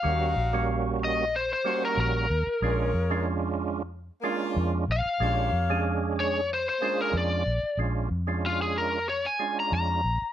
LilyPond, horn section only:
\new Staff \with { instrumentName = "Horn section" } { \time 4/4 \key ees \major \tempo 4 = 93 <g des' ees' fis'>4 r4. <g des' ees' fis'>8. r8. | <bes f' aes' cis''>4 r4. <bes f'>8. r8. | <bes f' g' cis''>4 r4. <bes aes'>8. r8. | r1 | }